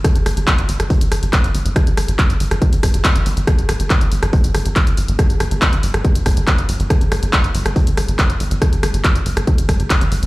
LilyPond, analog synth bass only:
\new Staff \with { instrumentName = "Analog synth bass" } { \clef bass \time 4/4 \key c \dorian \tempo 4 = 140 r16 g,,16 g,,16 g,,16 r16 g,,16 g,,16 g,,16 r16 g,,16 g,,16 g,,16 r16 g,,16 g,,16 g,,16 | r16 g,,16 g,,16 g,,16 r16 g,,16 g,,16 g,,16 r16 g,,16 g,,16 g,,16 r16 g,,16 g,,16 g,,16 | r16 g,,16 g,,16 g,,16 r16 g,,16 g,,16 g,,16 r16 g,,16 g,,16 g,,16 r16 g,,16 g,,16 g,,16 | r16 g,,16 g,,16 g,,16 r16 g,,16 g,,16 g,,16 r16 g,,16 g,,16 g,,16 r16 g,,16 g,,16 g,,16 |
r16 g,,16 g,,16 g,,16 r16 g,,16 g,,16 g,,16 r16 g,,16 g,,16 g,,16 r16 g,,16 g,,16 g,,16 | r16 g,,16 g,,16 g,,16 r16 g,,16 g,,16 g,,16 r16 g,,16 g,,16 g,,16 r16 g,,16 g,,16 g,,16 | }